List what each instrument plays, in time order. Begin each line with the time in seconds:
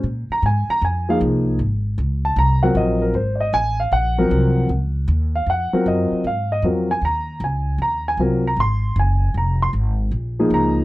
0.03 upright bass A#2
0.30 grand piano A#5, muted upright bass stroke
0.42 upright bass G#2, grand piano G#5
0.69 grand piano A#5, muted upright bass stroke
0.81 upright bass F2, grand piano G#5
1.09 grand piano F3 A#3 D#4 G#4 F5
1.21 upright bass C2
1.59 upright bass G#1
1.98 upright bass C#2
2.25 grand piano A5
2.36 upright bass C2, grand piano A#5
2.63 grand piano F#3 C4 F4 A#4 F#5
2.75 upright bass A#1, grand piano D#5
3.02 grand piano A#4
3.14 upright bass G#1, grand piano C5
3.35 grand piano D5
3.40 grand piano D#5
3.53 upright bass A1, grand piano G#5
3.80 grand piano F5
3.92 upright bass A#1, grand piano F#5
4.18 grand piano F3 F#3 C4 A#4
4.31 upright bass C2
4.69 upright bass C#2
5.08 upright bass D#2
5.36 grand piano F5
5.46 upright bass F2, grand piano F#5
5.73 grand piano F#3 C4 F4 A#4, muted upright bass stroke
5.86 upright bass F#2, grand piano D#5
6.11 muted upright bass stroke
6.24 upright bass G#2, grand piano F5
6.52 grand piano D#5
6.62 upright bass F2, grand piano F#3 C4 F4 A#4
6.91 grand piano G#5
7.02 upright bass D#2, grand piano A#5
7.40 upright bass C#2
7.44 grand piano G#5
7.78 upright bass D#2, grand piano A#5
8.08 grand piano G#5
8.17 upright bass C2, grand piano F#3 C4 F4 A#4
8.47 grand piano A#5
8.56 upright bass G#1, grand piano C6
8.96 upright bass F#1, grand piano G#5
9.34 upright bass F1, grand piano A#5
9.62 grand piano C6
9.73 upright bass G#1
10.11 upright bass A#1
10.39 grand piano F3 A#3 D#4 G#4
10.50 upright bass C#2, grand piano A#5